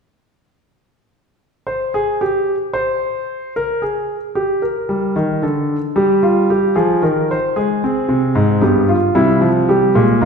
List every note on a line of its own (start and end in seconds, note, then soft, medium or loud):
1.67 1.93 C5 medium
1.94 2.20 G#4 medium
2.21 2.54 G4 medium
2.73 3.52 C5 medium
3.56 3.82 A#4 medium
3.82 4.15 G#4 medium
4.35 4.62 G4 medium
4.62 5.40 A#4 medium
4.89 5.15 G3 medium
5.16 5.42 D#3 medium
5.42 5.75 D3 medium
5.42 5.76 A4 medium
5.96 6.73 G3 medium
5.96 6.22 G4 medium
6.23 6.48 F4 medium
6.50 6.75 G4 medium
6.75 7.01 F3 medium
6.75 7.01 G#4 medium
7.02 7.35 D#3 medium
7.02 7.28 A#4 medium
7.31 7.56 C5 medium
7.56 7.82 G#3 medium
7.56 8.58 G#4 medium
7.84 8.60 C4 medium
8.08 8.34 C3 medium
8.35 8.61 G#2 medium
8.61 8.94 G2 medium
8.61 8.94 B3 medium
8.61 8.87 G4 medium
8.89 9.14 F4 medium
9.15 9.92 C3 medium
9.15 9.40 G3 medium
9.15 9.48 E4 medium
9.41 9.67 F3 medium
9.69 9.94 G3 medium
9.69 10.02 G4 medium
9.95 10.20 A#2 medium
9.95 10.20 G#3 medium
10.21 10.25 G#2 medium
10.21 10.25 A#3 medium